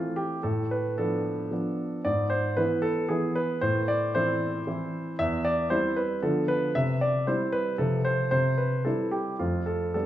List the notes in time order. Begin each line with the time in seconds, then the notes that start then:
Already playing: E3 A3 C4 F4
0.16 G4
0.43 A2 A4
0.71 B4
0.98 F3 B3 D4 A4
1.51 F3 B3 D4
2.05 G#2 D5
2.30 C5
2.57 E3 B3 E4 B4
2.82 A4
3.09 E3 B3 E4 G#4
3.35 B4
3.61 A2 C5
3.88 D5
4.15 E3 C4 E4 C5
4.67 E3 C4 E4
5.19 E2 E5
5.45 D5
5.70 G3 C4 E4 C5
5.96 B4
6.23 D3 F3 B3 F4 A4
6.48 B4
6.75 C3 E5
7.01 D5
7.27 G3 C4 E4 C5
7.52 B4
7.78 C3 F3 C4 F4 A4
8.05 C5
8.31 C3 C5
8.58 B4
8.85 G3 C4 E4 A4
9.11 G4
9.39 F2 A3 C4 F4
9.66 A4
9.94 G3 B3 D4 A4